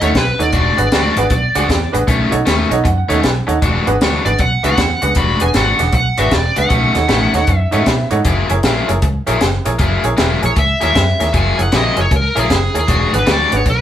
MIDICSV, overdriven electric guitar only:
0, 0, Header, 1, 3, 480
1, 0, Start_track
1, 0, Tempo, 386100
1, 669, Time_signature, 4, 2, 24, 8
1, 17170, End_track
2, 0, Start_track
2, 0, Title_t, "Overdriven electric guitar"
2, 0, Program_c, 0, 29
2, 13, Note_on_c, 0, 61, 75
2, 16, Note_on_c, 0, 57, 77
2, 19, Note_on_c, 0, 51, 70
2, 24, Note_on_c, 0, 47, 63
2, 165, Note_off_c, 0, 47, 0
2, 174, Note_off_c, 0, 57, 0
2, 175, Note_off_c, 0, 51, 0
2, 180, Note_off_c, 0, 61, 0
2, 656, Note_on_c, 0, 52, 64
2, 658, Note_on_c, 0, 56, 66
2, 662, Note_on_c, 0, 62, 86
2, 672, Note_on_c, 0, 66, 74
2, 957, Note_off_c, 0, 66, 0
2, 961, Note_off_c, 0, 62, 0
2, 964, Note_off_c, 0, 56, 0
2, 970, Note_off_c, 0, 52, 0
2, 1149, Note_on_c, 0, 52, 74
2, 1155, Note_on_c, 0, 56, 72
2, 1158, Note_on_c, 0, 62, 83
2, 1167, Note_on_c, 0, 66, 81
2, 1446, Note_off_c, 0, 66, 0
2, 1453, Note_off_c, 0, 56, 0
2, 1455, Note_off_c, 0, 62, 0
2, 1457, Note_off_c, 0, 52, 0
2, 1934, Note_on_c, 0, 66, 80
2, 1936, Note_on_c, 0, 62, 71
2, 1937, Note_on_c, 0, 56, 67
2, 1945, Note_on_c, 0, 52, 72
2, 2088, Note_off_c, 0, 52, 0
2, 2092, Note_off_c, 0, 56, 0
2, 2095, Note_off_c, 0, 66, 0
2, 2096, Note_off_c, 0, 62, 0
2, 2578, Note_on_c, 0, 47, 66
2, 2579, Note_on_c, 0, 51, 71
2, 2581, Note_on_c, 0, 57, 69
2, 2589, Note_on_c, 0, 61, 78
2, 2877, Note_off_c, 0, 61, 0
2, 2879, Note_off_c, 0, 57, 0
2, 2884, Note_off_c, 0, 51, 0
2, 2891, Note_off_c, 0, 47, 0
2, 3051, Note_on_c, 0, 47, 66
2, 3056, Note_on_c, 0, 51, 76
2, 3059, Note_on_c, 0, 57, 79
2, 3060, Note_on_c, 0, 61, 83
2, 3353, Note_off_c, 0, 61, 0
2, 3358, Note_off_c, 0, 57, 0
2, 3366, Note_off_c, 0, 51, 0
2, 3367, Note_off_c, 0, 47, 0
2, 3835, Note_on_c, 0, 61, 74
2, 3839, Note_on_c, 0, 57, 69
2, 3846, Note_on_c, 0, 51, 69
2, 3854, Note_on_c, 0, 47, 70
2, 3997, Note_off_c, 0, 47, 0
2, 4011, Note_off_c, 0, 51, 0
2, 4013, Note_off_c, 0, 57, 0
2, 4013, Note_off_c, 0, 61, 0
2, 4502, Note_on_c, 0, 56, 66
2, 4503, Note_on_c, 0, 52, 71
2, 4505, Note_on_c, 0, 62, 77
2, 4512, Note_on_c, 0, 66, 73
2, 4802, Note_off_c, 0, 66, 0
2, 4803, Note_off_c, 0, 62, 0
2, 4805, Note_off_c, 0, 56, 0
2, 4813, Note_off_c, 0, 52, 0
2, 4995, Note_on_c, 0, 52, 66
2, 5003, Note_on_c, 0, 56, 80
2, 5006, Note_on_c, 0, 62, 80
2, 5010, Note_on_c, 0, 66, 81
2, 5277, Note_off_c, 0, 66, 0
2, 5282, Note_off_c, 0, 62, 0
2, 5286, Note_off_c, 0, 56, 0
2, 5299, Note_off_c, 0, 52, 0
2, 5774, Note_on_c, 0, 62, 71
2, 5779, Note_on_c, 0, 66, 88
2, 5783, Note_on_c, 0, 56, 81
2, 5793, Note_on_c, 0, 52, 64
2, 5928, Note_off_c, 0, 56, 0
2, 5930, Note_off_c, 0, 52, 0
2, 5933, Note_off_c, 0, 62, 0
2, 5935, Note_off_c, 0, 66, 0
2, 6422, Note_on_c, 0, 52, 70
2, 6425, Note_on_c, 0, 56, 63
2, 6436, Note_on_c, 0, 62, 79
2, 6441, Note_on_c, 0, 66, 84
2, 6723, Note_off_c, 0, 66, 0
2, 6724, Note_off_c, 0, 62, 0
2, 6732, Note_off_c, 0, 52, 0
2, 6733, Note_off_c, 0, 56, 0
2, 6895, Note_on_c, 0, 52, 79
2, 6901, Note_on_c, 0, 56, 77
2, 6902, Note_on_c, 0, 62, 84
2, 6915, Note_on_c, 0, 66, 90
2, 7185, Note_off_c, 0, 66, 0
2, 7194, Note_off_c, 0, 62, 0
2, 7199, Note_off_c, 0, 56, 0
2, 7208, Note_off_c, 0, 52, 0
2, 7681, Note_on_c, 0, 66, 81
2, 7683, Note_on_c, 0, 62, 72
2, 7694, Note_on_c, 0, 56, 75
2, 7696, Note_on_c, 0, 52, 74
2, 7837, Note_off_c, 0, 52, 0
2, 7843, Note_off_c, 0, 62, 0
2, 7846, Note_off_c, 0, 56, 0
2, 7846, Note_off_c, 0, 66, 0
2, 8314, Note_on_c, 0, 47, 71
2, 8321, Note_on_c, 0, 51, 72
2, 8322, Note_on_c, 0, 57, 72
2, 8329, Note_on_c, 0, 61, 80
2, 8628, Note_off_c, 0, 61, 0
2, 8633, Note_off_c, 0, 57, 0
2, 8637, Note_off_c, 0, 47, 0
2, 8640, Note_off_c, 0, 51, 0
2, 8804, Note_on_c, 0, 47, 84
2, 8807, Note_on_c, 0, 57, 84
2, 8811, Note_on_c, 0, 51, 85
2, 8814, Note_on_c, 0, 61, 75
2, 9113, Note_off_c, 0, 61, 0
2, 9122, Note_off_c, 0, 47, 0
2, 9123, Note_off_c, 0, 57, 0
2, 9125, Note_off_c, 0, 51, 0
2, 9604, Note_on_c, 0, 61, 77
2, 9611, Note_on_c, 0, 57, 82
2, 9612, Note_on_c, 0, 47, 72
2, 9614, Note_on_c, 0, 51, 72
2, 9770, Note_off_c, 0, 47, 0
2, 9770, Note_off_c, 0, 51, 0
2, 9772, Note_off_c, 0, 57, 0
2, 9778, Note_off_c, 0, 61, 0
2, 10254, Note_on_c, 0, 54, 74
2, 10257, Note_on_c, 0, 58, 70
2, 10266, Note_on_c, 0, 64, 74
2, 10267, Note_on_c, 0, 68, 79
2, 10566, Note_off_c, 0, 54, 0
2, 10568, Note_off_c, 0, 58, 0
2, 10569, Note_off_c, 0, 68, 0
2, 10572, Note_off_c, 0, 64, 0
2, 10756, Note_on_c, 0, 54, 69
2, 10758, Note_on_c, 0, 58, 75
2, 10762, Note_on_c, 0, 64, 76
2, 10762, Note_on_c, 0, 68, 76
2, 11051, Note_off_c, 0, 64, 0
2, 11053, Note_off_c, 0, 68, 0
2, 11057, Note_off_c, 0, 54, 0
2, 11058, Note_off_c, 0, 58, 0
2, 11524, Note_on_c, 0, 68, 78
2, 11526, Note_on_c, 0, 64, 79
2, 11535, Note_on_c, 0, 58, 74
2, 11540, Note_on_c, 0, 54, 66
2, 11688, Note_off_c, 0, 54, 0
2, 11689, Note_off_c, 0, 58, 0
2, 11690, Note_off_c, 0, 64, 0
2, 11698, Note_off_c, 0, 68, 0
2, 12165, Note_on_c, 0, 54, 69
2, 12169, Note_on_c, 0, 58, 69
2, 12175, Note_on_c, 0, 64, 74
2, 12183, Note_on_c, 0, 68, 74
2, 12472, Note_off_c, 0, 68, 0
2, 12477, Note_off_c, 0, 64, 0
2, 12480, Note_off_c, 0, 58, 0
2, 12481, Note_off_c, 0, 54, 0
2, 12640, Note_on_c, 0, 54, 78
2, 12649, Note_on_c, 0, 58, 72
2, 12656, Note_on_c, 0, 64, 80
2, 12660, Note_on_c, 0, 68, 80
2, 12944, Note_off_c, 0, 68, 0
2, 12947, Note_off_c, 0, 64, 0
2, 12951, Note_off_c, 0, 58, 0
2, 12959, Note_off_c, 0, 54, 0
2, 13433, Note_on_c, 0, 68, 86
2, 13440, Note_on_c, 0, 64, 78
2, 13442, Note_on_c, 0, 54, 67
2, 13445, Note_on_c, 0, 58, 73
2, 13605, Note_off_c, 0, 54, 0
2, 13611, Note_off_c, 0, 58, 0
2, 13613, Note_off_c, 0, 68, 0
2, 13616, Note_off_c, 0, 64, 0
2, 14084, Note_on_c, 0, 54, 69
2, 14090, Note_on_c, 0, 58, 79
2, 14099, Note_on_c, 0, 68, 79
2, 14100, Note_on_c, 0, 64, 74
2, 14391, Note_off_c, 0, 68, 0
2, 14394, Note_off_c, 0, 64, 0
2, 14400, Note_off_c, 0, 58, 0
2, 14402, Note_off_c, 0, 54, 0
2, 14571, Note_on_c, 0, 54, 73
2, 14579, Note_on_c, 0, 58, 78
2, 14584, Note_on_c, 0, 64, 80
2, 14584, Note_on_c, 0, 68, 78
2, 14869, Note_off_c, 0, 68, 0
2, 14874, Note_off_c, 0, 64, 0
2, 14883, Note_off_c, 0, 58, 0
2, 14885, Note_off_c, 0, 54, 0
2, 15361, Note_on_c, 0, 68, 94
2, 15366, Note_on_c, 0, 64, 76
2, 15370, Note_on_c, 0, 58, 79
2, 15377, Note_on_c, 0, 54, 77
2, 15516, Note_off_c, 0, 54, 0
2, 15524, Note_off_c, 0, 58, 0
2, 15528, Note_off_c, 0, 68, 0
2, 15529, Note_off_c, 0, 64, 0
2, 16007, Note_on_c, 0, 52, 75
2, 16015, Note_on_c, 0, 56, 71
2, 16023, Note_on_c, 0, 66, 75
2, 16024, Note_on_c, 0, 62, 82
2, 16304, Note_off_c, 0, 66, 0
2, 16312, Note_off_c, 0, 62, 0
2, 16316, Note_off_c, 0, 56, 0
2, 16324, Note_off_c, 0, 52, 0
2, 16486, Note_on_c, 0, 52, 84
2, 16489, Note_on_c, 0, 56, 74
2, 16496, Note_on_c, 0, 62, 88
2, 16500, Note_on_c, 0, 66, 87
2, 16797, Note_off_c, 0, 66, 0
2, 16802, Note_off_c, 0, 56, 0
2, 16804, Note_off_c, 0, 52, 0
2, 16805, Note_off_c, 0, 62, 0
2, 17170, End_track
3, 0, Start_track
3, 0, Title_t, "Muted overdriven electric guitar strokes"
3, 180, Note_on_c, 9, 29, 43
3, 304, Note_off_c, 9, 29, 0
3, 487, Note_on_c, 9, 29, 53
3, 611, Note_off_c, 9, 29, 0
3, 971, Note_on_c, 9, 29, 44
3, 1096, Note_off_c, 9, 29, 0
3, 1461, Note_on_c, 9, 29, 47
3, 1585, Note_off_c, 9, 29, 0
3, 1624, Note_on_c, 9, 29, 41
3, 1748, Note_off_c, 9, 29, 0
3, 2103, Note_on_c, 9, 29, 44
3, 2227, Note_off_c, 9, 29, 0
3, 2406, Note_on_c, 9, 29, 46
3, 2530, Note_off_c, 9, 29, 0
3, 2892, Note_on_c, 9, 29, 42
3, 3017, Note_off_c, 9, 29, 0
3, 3368, Note_on_c, 9, 29, 44
3, 3492, Note_off_c, 9, 29, 0
3, 3528, Note_on_c, 9, 29, 43
3, 3652, Note_off_c, 9, 29, 0
3, 4012, Note_on_c, 9, 29, 43
3, 4136, Note_off_c, 9, 29, 0
3, 4312, Note_on_c, 9, 29, 45
3, 4436, Note_off_c, 9, 29, 0
3, 4817, Note_on_c, 9, 29, 40
3, 4941, Note_off_c, 9, 29, 0
3, 5292, Note_on_c, 9, 29, 48
3, 5416, Note_off_c, 9, 29, 0
3, 5465, Note_on_c, 9, 29, 36
3, 5590, Note_off_c, 9, 29, 0
3, 5943, Note_on_c, 9, 29, 45
3, 6067, Note_off_c, 9, 29, 0
3, 6239, Note_on_c, 9, 29, 48
3, 6363, Note_off_c, 9, 29, 0
3, 6738, Note_on_c, 9, 29, 49
3, 6862, Note_off_c, 9, 29, 0
3, 7200, Note_on_c, 9, 29, 44
3, 7324, Note_off_c, 9, 29, 0
3, 7369, Note_on_c, 9, 29, 42
3, 7493, Note_off_c, 9, 29, 0
3, 7852, Note_on_c, 9, 29, 39
3, 7976, Note_off_c, 9, 29, 0
3, 8157, Note_on_c, 9, 29, 50
3, 8282, Note_off_c, 9, 29, 0
3, 8643, Note_on_c, 9, 29, 49
3, 8767, Note_off_c, 9, 29, 0
3, 9127, Note_on_c, 9, 29, 50
3, 9252, Note_off_c, 9, 29, 0
3, 9303, Note_on_c, 9, 29, 42
3, 9427, Note_off_c, 9, 29, 0
3, 9785, Note_on_c, 9, 29, 41
3, 9909, Note_off_c, 9, 29, 0
3, 10096, Note_on_c, 9, 29, 45
3, 10221, Note_off_c, 9, 29, 0
3, 10584, Note_on_c, 9, 29, 48
3, 10708, Note_off_c, 9, 29, 0
3, 11066, Note_on_c, 9, 29, 42
3, 11191, Note_off_c, 9, 29, 0
3, 11218, Note_on_c, 9, 29, 39
3, 11342, Note_off_c, 9, 29, 0
3, 11703, Note_on_c, 9, 29, 42
3, 11827, Note_off_c, 9, 29, 0
3, 12006, Note_on_c, 9, 29, 50
3, 12130, Note_off_c, 9, 29, 0
3, 12487, Note_on_c, 9, 29, 46
3, 12612, Note_off_c, 9, 29, 0
3, 12959, Note_on_c, 9, 29, 46
3, 13083, Note_off_c, 9, 29, 0
3, 13129, Note_on_c, 9, 29, 44
3, 13253, Note_off_c, 9, 29, 0
3, 13620, Note_on_c, 9, 29, 43
3, 13744, Note_off_c, 9, 29, 0
3, 13924, Note_on_c, 9, 29, 47
3, 14049, Note_off_c, 9, 29, 0
3, 14406, Note_on_c, 9, 29, 48
3, 14530, Note_off_c, 9, 29, 0
3, 14884, Note_on_c, 9, 29, 47
3, 15008, Note_off_c, 9, 29, 0
3, 15056, Note_on_c, 9, 29, 43
3, 15180, Note_off_c, 9, 29, 0
3, 15531, Note_on_c, 9, 29, 38
3, 15655, Note_off_c, 9, 29, 0
3, 15849, Note_on_c, 9, 29, 51
3, 15973, Note_off_c, 9, 29, 0
3, 16319, Note_on_c, 9, 29, 46
3, 16443, Note_off_c, 9, 29, 0
3, 16812, Note_on_c, 9, 29, 52
3, 16936, Note_off_c, 9, 29, 0
3, 16982, Note_on_c, 9, 29, 41
3, 17106, Note_off_c, 9, 29, 0
3, 17170, End_track
0, 0, End_of_file